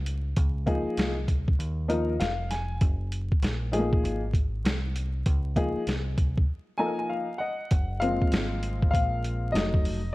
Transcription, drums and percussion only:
0.06 closed hi-hat
0.36 kick, closed hi-hat
0.67 kick, closed hi-hat
0.97 snare, closed hi-hat
1.28 kick, closed hi-hat
1.48 kick
1.60 closed hi-hat
1.90 closed hi-hat
2.20 snare, closed hi-hat
2.51 snare, closed hi-hat
2.81 kick, closed hi-hat
3.12 closed hi-hat
3.32 kick
3.43 snare, closed hi-hat
3.73 closed hi-hat
3.93 kick
4.05 closed hi-hat
4.33 kick, closed hi-hat
4.65 snare, closed hi-hat
4.96 closed hi-hat
5.26 kick, closed hi-hat
5.56 kick, closed hi-hat
5.87 snare, closed hi-hat
6.18 kick, closed hi-hat
6.38 kick
7.71 kick, closed hi-hat
8.02 closed hi-hat
8.22 kick
8.32 snare, closed hi-hat
8.63 closed hi-hat
8.82 kick
8.94 kick, closed hi-hat
9.24 closed hi-hat
9.55 snare, closed hi-hat
9.74 kick
9.85 open hi-hat

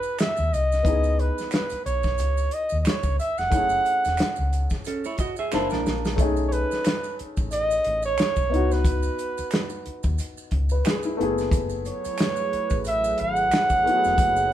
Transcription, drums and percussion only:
0.03 maracas
0.19 finger snap, snare, closed hi-hat, maracas
0.37 maracas
0.54 closed hi-hat, maracas
0.72 snare, maracas
0.85 kick, closed hi-hat, maracas
1.03 maracas
1.19 closed hi-hat
1.38 snare, maracas
1.51 finger snap, snare, closed hi-hat, maracas
1.70 closed hi-hat, maracas
1.86 closed hi-hat, maracas
2.03 kick, snare, maracas
2.18 closed hi-hat, maracas
2.37 maracas
2.51 closed hi-hat
2.69 maracas
2.85 finger snap, snare, closed hi-hat, maracas
3.03 kick, maracas
3.20 closed hi-hat, maracas
3.38 snare, maracas
3.52 kick, closed hi-hat, maracas
3.69 maracas
3.85 closed hi-hat, maracas
4.05 snare, closed hi-hat, maracas
4.17 finger snap, snare, closed hi-hat, maracas
4.36 maracas
4.53 closed hi-hat, maracas
4.70 kick, snare, maracas
4.84 closed hi-hat, maracas
5.04 maracas
5.18 kick, closed hi-hat, maracas
5.36 maracas
5.52 finger snap, snare, maracas
5.70 snare, maracas
5.86 snare, maracas
6.05 snare, maracas
6.18 kick, closed hi-hat, maracas
6.37 maracas
6.52 closed hi-hat, maracas
6.71 snare, maracas
6.85 finger snap, snare, closed hi-hat, maracas
7.04 maracas
7.19 closed hi-hat
7.37 kick, maracas
7.51 closed hi-hat, maracas
7.71 maracas
7.84 closed hi-hat
8.02 maracas
8.18 finger snap, snare, closed hi-hat, maracas
8.36 kick, maracas
8.54 closed hi-hat
8.71 snare, maracas
8.85 kick, closed hi-hat, maracas
9.03 maracas
9.18 closed hi-hat, maracas
9.38 closed hi-hat, maracas
9.51 finger snap, snare, closed hi-hat, maracas
9.70 maracas
9.86 closed hi-hat
10.03 kick, maracas
10.18 closed hi-hat, maracas
10.37 maracas
10.51 kick, closed hi-hat
10.69 maracas
10.85 finger snap, snare, closed hi-hat, maracas
11.03 maracas
11.21 closed hi-hat
11.38 snare, maracas
11.51 kick, closed hi-hat, maracas
11.69 maracas
11.85 closed hi-hat, maracas
12.05 closed hi-hat, maracas
12.18 finger snap, snare, closed hi-hat, maracas
12.36 maracas
12.53 closed hi-hat
12.70 kick, maracas
12.85 closed hi-hat, maracas
13.04 maracas
13.18 closed hi-hat
13.36 maracas
13.51 finger snap, snare, closed hi-hat, maracas
13.70 kick, maracas
13.87 closed hi-hat
14.04 snare, maracas
14.18 kick, closed hi-hat, maracas
14.36 maracas

